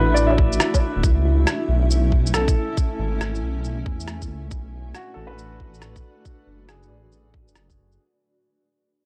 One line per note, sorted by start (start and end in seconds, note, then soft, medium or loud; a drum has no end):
0.00 0.38 A1 medium
0.00 0.99 A3 medium
0.00 0.99 D4 medium
0.00 1.00 E4 medium
0.00 1.00 F#4 medium
0.00 0.55 B4 medium
0.00 4.47 E5 medium
0.14 0.71 D5 medium
0.14 shaker soft
0.27 0.82 E5 soft
0.27 low woodblock medium
0.38 0.59 A1 medium
0.38 kick medium
0.52 shaker medium
0.60 cross-stick loud
0.60 shaker medium
0.74 kick medium
0.74 low woodblock medium
0.74 shaker soft
0.96 1.03 D1 medium
1.03 1.46 C#2 loud
1.03 7.95 A3 medium
1.03 4.48 C#4 medium
1.03 4.47 E4 medium
1.03 4.47 G#5 medium
1.03 kick loud
1.03 shaker soft
1.47 cross-stick medium
1.47 shaker soft
1.69 2.55 B1 medium
1.91 shaker soft
2.12 kick medium
2.26 shaker soft
2.34 2.94 A4 medium
2.34 cross-stick medium
2.34 shaker soft
2.48 kick loud
2.48 shaker soft
2.77 kick loud
2.77 shaker soft
2.99 3.41 G#1 medium
3.21 cross-stick medium
3.21 shaker soft
3.35 shaker soft
3.42 3.85 B1 medium
3.64 shaker soft
3.86 4.31 E2 loud
3.86 kick medium
4.00 shaker soft
4.08 cross-stick medium
4.08 shaker soft
4.22 kick medium
4.22 shaker medium
4.29 4.50 C#2 medium
4.51 4.94 B1 loud
4.51 7.96 D4 medium
4.51 7.96 F#4 medium
4.51 7.96 B4 medium
4.51 7.96 D5 medium
4.51 kick loud
4.51 shaker medium
4.95 5.55 F#4 medium
4.95 cross-stick medium
4.95 shaker soft
5.14 6.02 A1 medium
5.14 5.71 A4 medium
5.27 5.82 B4 medium
5.38 shaker soft
5.60 kick medium
5.74 shaker soft
5.82 cross-stick medium
5.82 shaker soft
5.96 kick medium
5.96 shaker soft
6.25 kick loud
6.25 shaker soft
6.47 6.89 F#1 medium
6.69 7.29 G#4 soft
6.69 cross-stick medium
6.69 shaker soft
6.83 shaker soft
6.90 7.49 A1 medium
7.12 shaker soft
7.34 kick medium
7.48 7.55 F#1 medium
7.48 shaker soft
7.55 7.98 F#1 medium
7.55 cross-stick medium
7.55 shaker medium
7.70 kick medium
7.70 shaker soft
7.92 shaker soft